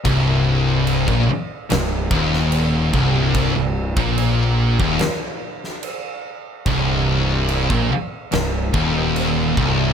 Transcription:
<<
  \new Staff \with { instrumentName = "Distorted electric guitar" } { \clef bass \time 4/4 \key c \minor \tempo 4 = 72 c,4~ c,16 bes,16 r8 c,8 ees,4 c,8~ | c,16 c,8 bes,4 ees,16 r2 | c,4~ c,16 bes,16 r8 c,8 ees,4 c,8 | }
  \new Staff \with { instrumentName = "Distorted electric guitar" } { \clef bass \time 4/4 \key c \minor c,4~ c,16 bes,16 r8 c,8 ees,4 c,8~ | c,16 c,8 bes,4 ees,16 r2 | c,4~ c,16 bes,16 r8 c,8 ees,4 c,8 | }
  \new Staff \with { instrumentName = "Distorted electric guitar" } { \clef bass \time 4/4 \key c \minor c,4~ c,16 bes,16 r8 c,8 ees,4 c,8~ | c,16 c,8 bes,4 ees,16 r2 | c,4~ c,16 bes,16 r8 c,8 ees,4 c,8 | }
  \new Staff \with { instrumentName = "Picked electric bass" } { \clef bass \time 4/4 \key c \minor c,,4~ c,,16 bes,,16 r8 c,,8 ees,,4 c,,8~ | c,,16 c,,8 bes,,4 ees,,16 r2 | c,,4~ c,,16 bes,,16 r8 c,,8 ees,,4 c,,8 | }
  \new DrumStaff \with { instrumentName = "Drums" } \drummode { \time 4/4 <cymc bd>4 cymc16 bd8. <cymc sn>8 bd16 sn16 cymc8 bd8 | <cymc bd>8. bd16 cymc8. bd16 <cymc sn>8. sn16 cymc4 | <cymc bd>4 cymc16 bd8. <cymc sn>8 bd8 cymc8 bd8 | }
>>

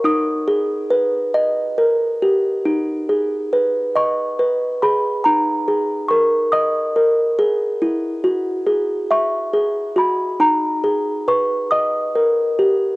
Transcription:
\new Staff \with { instrumentName = "Music box" } { \time 6/8 \key gis \minor \tempo 4. = 46 << { dis'''2 r4 | r4. cis'''4 b''8 | ais''4 cis'''8 dis'''4 r8 | r4. cis'''4 b''8 |
ais''4 cis'''8 dis'''4 r8 | } \\ { dis'8 gis'8 b'8 dis''8 ais'8 g'8 | dis'8 gis'8 b'8 dis''8 b'8 gis'8 | dis'8 gis'8 ais'8 dis''8 ais'8 gis'8 | e'8 fis'8 gis'8 e''8 gis'8 fis'8 |
dis'8 gis'8 b'8 dis''8 ais'8 g'8 | } >> }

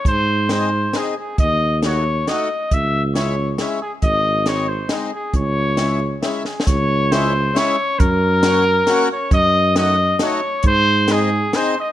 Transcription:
<<
  \new Staff \with { instrumentName = "Trumpet" } { \time 3/4 \key cis \minor \tempo 4 = 136 bis'4 bis'4 gis'8 gis'8 | dis''4 cis''4 dis''4 | e''4 cis''4 r8 gis'8 | dis''4 cis''8 bis'8 gis'8 gis'8 |
cis''2 r8 gis'8 | cis''4 bis'4 cis''4 | ais'2~ ais'8 cis''8 | dis''4 dis''4 cis''4 |
bis'4 gis'4 bis'8 dis''8 | }
  \new Staff \with { instrumentName = "Accordion" } { \time 3/4 \key cis \minor r4 <bis dis' gis'>8 r8 <bis dis' gis'>8 r8 | r4 <a dis' fis'>8 r8 <a dis' fis'>8 r8 | r4 <gis cis' e'>8 r8 <gis cis' e'>8 r8 | r4 <gis bis dis'>8 r8 <gis bis dis'>8 r8 |
r4 <gis cis' e'>8 r8 <gis cis' e'>8 r8 | r4 <gis cis' e'>8 r8 <gis cis' e'>8 r8 | r4 <ais cis' fis'>8 r8 <ais cis' fis'>8 r8 | r4 <a dis' fis'>8 r8 <a dis' fis'>8 r8 |
r4 <bis dis' gis'>8 r8 <bis dis' gis'>8 r8 | }
  \new Staff \with { instrumentName = "Tuba" } { \clef bass \time 3/4 \key cis \minor gis,2. | dis,2. | cis,2. | gis,,2. |
cis,2. | cis,2. | fis,2. | fis,2. |
gis,2. | }
  \new DrumStaff \with { instrumentName = "Drums" } \drummode { \time 3/4 <hh bd>4 <hh sn>4 <hh sn>4 | <hh bd>4 <hh sn>4 <hh sn>4 | <hh bd>4 <hh sn>4 <hh sn>4 | <hh bd>4 <hh sn>4 <hh sn>4 |
<hh bd>4 <hh sn>4 \tuplet 3/2 { <hh sn>16 r16 r16 sn16 r16 sn16 } | <hh bd>4 <hh sn>4 <hh sn>4 | <hh bd>4 <hh sn>4 <hh sn>4 | <hh bd>4 <hh sn>4 <hh sn>4 |
<hh bd>4 <hh sn>4 <hh sn>4 | }
>>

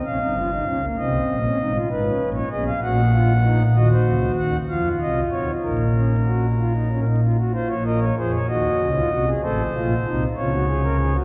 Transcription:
<<
  \new Staff \with { instrumentName = "Pipe organ" } { \time 6/8 \key ges \major \tempo 4. = 64 << { f''4. ees''4. | ces''8. des''16 ees''16 f''16 ges''4. | \key bes \minor ees''16 c''8. ges''8 f''8 ees''8 des''8 | bes'2~ bes'8 r8 |
c''16 des''16 ees''16 des''16 c''16 des''16 ees''4. | c''4. des''4. | } \\ { des'16 ees'16 f'16 ees'16 des'16 bes16 c'8. des'16 ees'16 f'16 | ees'16 des'8. aes'8 ges'8 f'8 ees'8 | ges'4. f'4. | ees'8 des'8 ges'8 f'16 ees'16 des'16 ees'16 f'16 ges'16 |
f'8 bes'8 aes'8 ges'8. f'16 ges'16 aes'16 | a'8 f'8 ees'8 f'16 ges'16 aes'16 bes'16 aes'16 ges'16 | } >> }
  \new Staff \with { instrumentName = "Pipe organ" } { \clef bass \time 6/8 \key ges \major <bes,, bes,>16 <g,, g,>8. <des, des>8 <c, c>8 <bes,, bes,>8 <aes,, aes,>8 | <aes,, aes,>8 <bes,, bes,>8 <ces, ces>8 <bes,, bes,>4. | \key bes \minor <ees, ees>8 <des, des>8 <ees, ees>8 <f, f>8 <c, c>8 <ees, ees>8 | <bes,, bes,>2~ <bes,, bes,>8 r8 |
r16 <bes,, bes,>8. <f, f>8 <ees, ees>8 <des, des>8 <c, c>8 | <a,, a,>8 <bes,, bes,>8 <c, c>8 <des, des>4. | }
>>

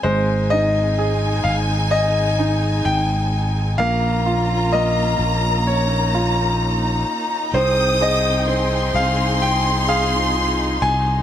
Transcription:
<<
  \new Staff \with { instrumentName = "Violin section" } { \time 4/4 \key aes \major \tempo 4 = 64 aes''1 | bes''1 | ees'''4 c'''2. | }
  \new Staff \with { instrumentName = "Grand piano" } { \time 4/4 \key aes \major c''8 ees''4 f''8 ees''4 g''4 | f''4 ees''4 des''4 r4 | c''8 ees''4 f''8 g''8 f''4 aes''8 | }
  \new Staff \with { instrumentName = "Grand piano" } { \time 4/4 \key aes \major aes8 ees'8 aes'4. ees'4. | bes8 f'8 bes4. f'4. | c'8 aes'8 c'4. aes'4. | }
  \new Staff \with { instrumentName = "String section" } { \time 4/4 \key aes \major << { ees'1 | f'2 ees'2 | <c c' aes'>1 | } \\ { <aes c'>1 | <bes des'>1 | g''2 f'2 | } >> }
  \new Staff \with { instrumentName = "Fretless electric bass" } { \clef bass \time 4/4 \key aes \major aes,,4. aes,,4. aes,,4 | bes,,4. bes,,2 r8 | c,4. c,2 c,8 | }
>>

